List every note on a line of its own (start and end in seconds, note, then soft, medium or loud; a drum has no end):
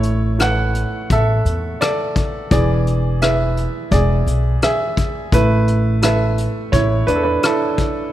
0.00 0.82 A1 medium
0.00 2.47 A3 medium
0.00 0.36 E4 medium
0.00 0.42 C#5 medium
0.00 closed hi-hat soft
0.38 2.46 E4 soft
0.38 1.11 A4 soft
0.38 2.47 B4 soft
0.38 1.13 F#5 medium
0.38 cross-stick medium
0.38 closed hi-hat medium
0.75 closed hi-hat soft
1.10 1.38 A1 medium
1.10 1.78 A4 medium
1.10 1.78 E5 medium
1.10 kick medium
1.10 closed hi-hat medium
1.45 1.74 E2 medium
1.45 closed hi-hat soft
1.81 2.47 A4 medium
1.81 2.50 D5 medium
1.81 cross-stick medium
1.81 closed hi-hat medium
2.16 kick medium
2.16 closed hi-hat soft
2.51 3.64 E1 medium
2.51 5.28 E3 medium
2.51 3.18 G#4 medium
2.51 3.24 D5 medium
2.51 kick medium
2.51 closed hi-hat medium
2.87 closed hi-hat soft
3.22 5.29 E4 soft
3.22 3.92 G#4 soft
3.22 5.29 B4 soft
3.22 3.94 E5 medium
3.22 cross-stick medium
3.22 closed hi-hat medium
3.57 closed hi-hat soft
3.91 4.20 E1 medium
3.91 4.59 G#4 medium
3.91 4.58 D5 medium
3.91 kick medium
3.91 closed hi-hat medium
4.26 4.55 B1 medium
4.26 closed hi-hat soft
4.62 5.12 G#4 medium
4.62 5.12 E5 medium
4.62 cross-stick medium
4.62 closed hi-hat medium
4.97 kick medium
4.97 closed hi-hat soft
5.32 6.45 A1 medium
5.32 8.10 A3 medium
5.32 6.00 E4 medium
5.32 6.01 B4 medium
5.32 kick medium
5.32 closed hi-hat medium
5.68 closed hi-hat soft
6.02 6.73 E4 soft
6.02 6.04 A4 soft
6.02 6.70 A4 medium
6.02 7.05 B4 medium
6.02 6.69 E5 medium
6.02 cross-stick medium
6.02 closed hi-hat medium
6.38 closed hi-hat soft
6.72 7.01 A1 medium
6.72 7.06 E4 medium
6.72 7.09 C#5 medium
6.72 kick medium
6.72 closed hi-hat medium
7.07 7.36 E2 medium
7.07 7.15 D4 medium
7.07 7.15 B4 medium
7.07 closed hi-hat soft
7.16 7.22 A4 medium
7.23 7.43 D4 medium
7.23 7.44 B4 medium
7.43 8.11 E4 medium
7.43 8.12 A4 medium
7.43 cross-stick medium
7.43 closed hi-hat medium
7.78 kick medium
7.78 closed hi-hat soft